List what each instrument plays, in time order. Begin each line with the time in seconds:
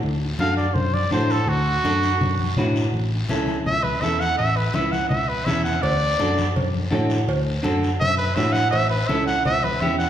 0.03 tine electric piano D2, high conga, long guiro
0.39 tine electric piano F#2, clean electric guitar D4 F#4 A4, trumpet F5, high conga, short guiro
0.57 trumpet D5, short guiro
0.74 tine electric piano F#2, trumpet C5, high conga, low conga, long guiro
0.94 trumpet D5, high conga
1.11 tine electric piano A2, clean electric guitar D4 F#4 A4, trumpet C5, high conga, short guiro
1.30 trumpet A4, short guiro
1.47 tine electric piano D2, trumpet F#4, high conga, long guiro
1.84 tine electric piano F#2, clean electric guitar D4 F#4 A4, high conga, short guiro
2.02 short guiro
2.21 tine electric piano F#2, high conga, low conga, long guiro
2.39 high conga
2.57 tine electric piano A2, clean electric guitar D4 F#4 B4, high conga, low conga, short guiro
2.76 short guiro
2.93 tine electric piano A1, high conga, long guiro
3.29 tine electric piano C#2, clean electric guitar C#4 E4 A4, high conga, short guiro
3.47 high conga, short guiro
3.66 tine electric piano C#2, trumpet E5, high conga, low conga, long guiro
3.83 trumpet B4, high conga
4.02 tine electric piano E2, clean electric guitar C#4 E4 A4, trumpet E5, high conga, short guiro
4.21 trumpet F#5, short guiro
4.38 tine electric piano A1, trumpet E5, high conga, long guiro
4.56 trumpet B4
4.74 tine electric piano C#2, clean electric guitar C#4 E4 B4, trumpet E5, high conga, short guiro
4.92 trumpet F#5, high conga, short guiro
5.09 tine electric piano C#2, trumpet E5, high conga, low conga, long guiro
5.29 trumpet B4
5.46 tine electric piano E2, clean electric guitar C#4 E4 B4, trumpet E5, high conga, low conga, short guiro
5.64 trumpet F#5, short guiro
5.82 tine electric piano D2, trumpet D5, cowbell, high conga, long guiro
6.19 tine electric piano F#2, clean electric guitar D4 F#4 A4, high conga, short guiro
6.38 high conga, short guiro
6.56 tine electric piano F#2, cowbell, high conga, low conga, long guiro
6.74 high conga
6.91 tine electric piano A2, clean electric guitar D4 F#4 A4, high conga, low timbale, short guiro
7.10 short guiro
7.29 tine electric piano D2, cowbell, high conga, long guiro
7.63 tine electric piano F#2, clean electric guitar D4 F#4 A4, high conga, short guiro
7.83 short guiro
8.00 tine electric piano F#2, trumpet E5, cowbell, high conga, low conga, long guiro
8.18 trumpet B4
8.36 tine electric piano A2, clean electric guitar D4 F#4 B4, trumpet E5, high conga, low timbale, short guiro
8.53 trumpet F#5, short guiro
8.71 tine electric piano A1, trumpet E5, cowbell, high conga, long guiro
8.90 trumpet B4
9.07 tine electric piano C#2, clean electric guitar C#4 E4 A4, trumpet E5, high conga, short guiro
9.26 trumpet F#5, short guiro
9.45 tine electric piano C#2, trumpet E5, cowbell, high conga, low conga, long guiro
9.64 trumpet B4, high conga
9.81 tine electric piano E2, clean electric guitar C#4 E4 G4, trumpet E5, high conga, short guiro
9.99 trumpet F#5, short guiro